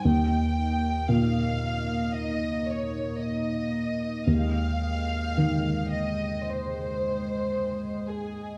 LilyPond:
<<
  \new Staff \with { instrumentName = "Violin section" } { \time 4/4 \key aes \major \tempo 4 = 56 g''4 f''4 ees''8 des''8 ees''4 | f''4. ees''8 c''4. aes'8 | }
  \new Staff \with { instrumentName = "Analog synth pad" } { \time 4/4 \key aes \major <bes ees' ees''>1 | <aes ees'' g''>1 | }
  \new Staff \with { instrumentName = "Felt piano" } { \clef bass \time 4/4 \key aes \major ees,4 bes,2. | ees,4 ees2. | }
>>